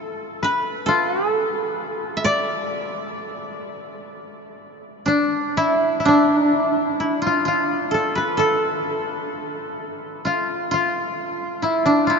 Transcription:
0.00 0.41 F4 medium
0.00 0.86 A4 medium
0.00 0.88 A4 medium
0.43 2.20 B4 medium
0.43 2.22 B4 medium
0.86 1.31 F4 medium
0.86 1.31 A4 medium
1.31 2.79 A4 medium
1.31 1.43 A#4 medium
1.43 1.56 A4 medium
1.56 1.68 A#4 medium
1.68 2.76 A4 medium
2.17 3.66 E5 medium
2.24 5.51 D5 medium
2.24 3.40 D5 medium
3.40 3.72 D#5 medium
3.72 4.06 D5 medium
4.06 4.37 D#5 medium
4.37 5.52 D5 medium
5.06 6.05 D4 medium
5.06 6.08 D4 medium
5.57 7.00 E4 medium
5.57 6.00 E4 medium
6.00 7.33 E4 medium
6.05 8.48 D4 medium
6.05 8.51 D4 medium
7.00 7.28 E4 medium
7.22 7.45 F4 medium
7.27 7.47 F4 medium
7.45 9.64 F4 medium
7.45 9.66 F4 medium
7.91 8.37 A4 medium
7.91 8.39 A4 medium
8.15 9.93 B4 medium
8.15 9.95 B4 medium
8.37 10.28 A4 medium
8.37 10.30 A4 medium
10.25 10.71 F4 medium
10.25 10.73 F4 medium
10.71 11.68 F4 medium
10.71 11.69 F4 medium
11.62 12.16 E4 soft
11.62 12.13 E4 medium
11.85 12.19 D4 medium
12.07 12.19 F4 medium

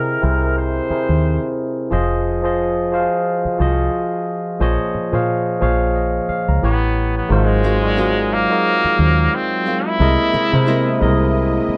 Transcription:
0.00 0.15 C3 medium
0.00 0.21 C3 medium
0.00 0.22 C4 medium
0.00 0.22 E4 medium
0.00 0.23 G#4 medium
0.00 0.23 A#4 medium
0.00 0.57 A#4 medium
0.00 1.92 D#5 medium
0.00 0.19 E5 medium
0.21 0.80 C2 medium
0.21 0.83 C3 medium
0.21 0.83 C4 medium
0.21 0.84 E4 medium
0.21 0.84 G#4 medium
0.21 0.84 A#4 medium
0.21 0.85 C5 medium
0.58 1.54 C5 medium
0.89 1.82 C3 medium
0.89 1.82 C4 medium
0.89 1.82 E4 medium
0.89 1.83 G#4 medium
0.89 1.83 A#4 medium
0.89 1.83 C5 medium
0.89 muted fingered electric bass stroke soft
1.09 1.37 D#2 medium
1.90 3.07 F1 medium
1.90 2.37 F3 medium
1.90 2.38 F4 medium
1.90 2.38 G#4 medium
1.90 2.38 C5 medium
1.90 2.39 D#5 loud
2.43 2.87 F3 medium
2.43 2.87 F4 medium
2.43 2.88 G#4 medium
2.43 2.88 C5 medium
2.43 2.88 D#5 medium
2.92 3.53 F3 medium
2.92 3.54 F4 medium
2.92 2.99 F#4 medium
2.92 3.54 C5 medium
2.92 3.55 F5 medium
2.99 3.57 G#4 medium
3.45 muted fingered electric bass stroke soft
3.59 3.88 C2 medium
3.59 4.51 F3 medium
3.59 4.52 F4 medium
3.59 3.66 F#4 soft
3.59 4.52 C5 medium
3.59 4.53 D#5 medium
3.66 4.55 G#4 medium
4.59 4.76 A#1 medium
4.59 5.07 A#2 medium
4.59 5.07 F3 medium
4.59 5.07 G#4 medium
4.59 5.08 C5 medium
4.59 5.08 C#5 medium
4.59 5.08 D#5 loud
4.95 muted fingered electric bass stroke soft
5.12 5.56 A#2 medium
5.12 5.63 A#2 medium
5.12 5.57 F3 medium
5.12 5.57 G#4 medium
5.12 5.57 C5 medium
5.12 5.57 C#5 medium
5.12 5.58 F5 medium
5.60 6.19 A#1 medium
5.60 6.22 A#2 medium
5.60 6.22 F3 medium
5.60 6.23 G#4 medium
5.60 6.23 C5 medium
5.60 6.23 C#5 medium
5.60 5.95 F5 medium
5.96 6.27 D#5 soft
6.29 6.46 F5 medium
6.29 muted fingered electric bass stroke soft
6.48 6.60 C#2 medium
6.48 6.80 A#5 medium
6.62 7.20 A1 medium
6.62 7.24 A2 medium
6.62 7.24 E3 medium
6.62 7.12 B3 medium
6.62 7.24 G4 medium
6.62 7.25 B4 medium
6.62 7.25 C#5 medium
7.17 7.30 B3 medium
7.29 8.45 G#1 medium
7.29 9.96 F#3 medium
7.29 7.76 G#3 medium
7.29 9.96 G#3 medium
7.29 8.35 G#3 medium
7.29 9.96 C4 medium
7.29 7.77 D#4 medium
7.29 7.77 F4 medium
7.29 7.77 F#4 medium
7.29 7.78 A#4 medium
7.29 7.78 C5 medium
7.63 7.94 C4 medium
7.63 7.95 F#4 medium
7.63 7.95 A#4 medium
7.63 7.95 F5 medium
7.82 8.42 G#3 medium
7.82 8.43 D#4 medium
7.82 8.43 F4 medium
7.82 8.43 F#4 medium
7.82 8.44 A#4 medium
7.82 7.89 D5 medium
7.91 8.47 D#5 medium
7.96 8.16 C4 medium
7.96 8.16 F#4 medium
7.96 8.16 A#4 medium
7.96 8.17 F5 medium
8.33 9.36 A#3 medium
8.49 9.70 G#3 medium
8.49 9.71 D#4 medium
8.49 9.71 F4 medium
8.49 9.71 F#4 medium
8.49 9.72 A#4 medium
8.49 9.72 D#5 medium
8.84 muted fingered electric bass stroke soft
8.99 9.27 D#2 medium
9.35 9.88 C4 medium
9.66 9.81 C4 medium
9.66 9.81 F#4 medium
9.66 9.81 A#4 medium
9.66 9.81 F5 medium
9.87 11.20 E4 loud
9.99 10.15 C2 loud
9.99 10.46 C3 medium
9.99 11.77 C3 medium
9.99 11.77 G#3 medium
9.99 10.47 G#3 medium
9.99 11.77 A#3 medium
9.99 11.77 E4 medium
9.99 10.47 E4 medium
9.99 10.47 A#4 medium
9.99 11.77 D#5 medium
9.99 10.48 D#5 loud
10.33 10.64 C4 medium
10.33 10.64 E4 medium
10.33 10.64 A#4 medium
10.33 10.65 D#5 medium
10.33 muted fingered electric bass stroke soft
10.52 10.96 C3 medium
10.52 11.03 C3 medium
10.52 10.97 G#3 medium
10.52 10.97 E4 medium
10.52 10.97 A#4 medium
10.52 10.97 C5 medium
10.66 10.85 C4 medium
10.66 10.86 E4 medium
10.66 10.86 A#4 medium
10.66 10.86 D#5 loud
10.99 11.58 C2 medium
10.99 11.77 C3 medium
10.99 11.77 G#3 medium
10.99 11.77 E4 medium
10.99 11.77 A#4 medium
10.99 11.77 D#5 medium
11.68 muted fingered electric bass stroke soft

